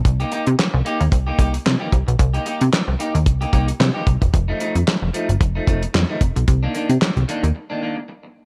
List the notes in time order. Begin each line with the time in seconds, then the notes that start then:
0.05 C2, muted clean electric guitar stroke, kick, closed hi-hat
0.20 A#3 D#4 G4, closed hi-hat
0.31 A#3 D#4 G4, closed hi-hat
0.46 C3, muted clean electric guitar stroke, closed hi-hat
0.59 snare, clap
0.73 C2, muted clean electric guitar stroke
0.85 A#3 D#4 G4, closed hi-hat
1.00 D#2, muted clean electric guitar stroke, closed hi-hat
1.12 C2, muted clean electric guitar stroke, kick, closed hi-hat
1.27 A#3 D#4 G4
1.38 C2 A#3 D#4 G4, kick, closed hi-hat
1.54 muted clean electric guitar stroke, closed hi-hat
1.65 C3, muted clean electric guitar stroke, snare, clap
1.80 A#3 D#4 G4
1.92 C2, muted clean electric guitar stroke, kick, closed hi-hat
2.07 B1, muted clean electric guitar stroke, closed hi-hat
2.19 C2, muted clean electric guitar stroke, kick, closed hi-hat
2.34 A#3 D#4 G4, closed hi-hat
2.45 A#3 D#4 G4, closed hi-hat
2.60 C3, muted clean electric guitar stroke, closed hi-hat
2.73 snare, clap
2.87 C2, muted clean electric guitar stroke
2.99 A#3 D#4 G4, closed hi-hat
3.14 D#2, muted clean electric guitar stroke, closed hi-hat
3.26 C2, muted clean electric guitar stroke, kick, closed hi-hat
3.41 A#3 D#4 G4, closed hi-hat
3.53 C2 A#3 D#4 G4, kick, closed hi-hat
3.68 muted clean electric guitar stroke, closed hi-hat
3.80 C3, snare, clap
3.94 A#3 D#4 G4
4.06 C2, muted clean electric guitar stroke, kick, closed hi-hat
4.21 E1, muted clean electric guitar stroke, kick, closed hi-hat
4.33 F1, muted clean electric guitar stroke, kick, closed hi-hat
4.48 F3 A3 D#4
4.60 F3 A3 D#4, closed hi-hat
4.75 F2, muted clean electric guitar stroke, closed hi-hat
4.88 snare, clap
5.02 F1, muted clean electric guitar stroke
5.13 F3 A3 D#4, closed hi-hat
5.29 G1, muted clean electric guitar stroke, closed hi-hat
5.41 F1, muted clean electric guitar stroke, kick, closed hi-hat
5.55 F3 A3 D#4
5.67 F1 F3 A3 D#4, kick, closed hi-hat
5.82 muted clean electric guitar stroke, closed hi-hat
5.94 F2, muted clean electric guitar stroke, snare, clap
6.09 F3 A3 D#4
6.21 F1, muted clean electric guitar stroke, kick, closed hi-hat
6.36 B1, muted clean electric guitar stroke, closed hi-hat
6.48 C2, muted clean electric guitar stroke, kick, closed hi-hat
6.63 D#3 A#3 D4
6.74 D#3 A#3 D4, closed hi-hat
6.89 C3, muted clean electric guitar stroke, closed hi-hat
7.02 snare, clap
7.16 C2, muted clean electric guitar stroke, closed hi-hat
7.28 D#3 A#3 D4, closed hi-hat
7.43 D#2, muted clean electric guitar stroke, closed hi-hat
7.55 muted clean electric guitar stroke
7.70 D#3 A#3 D4
7.82 D#3 A#3 D4
7.97 muted clean electric guitar stroke
8.08 muted clean electric guitar stroke
8.23 muted clean electric guitar stroke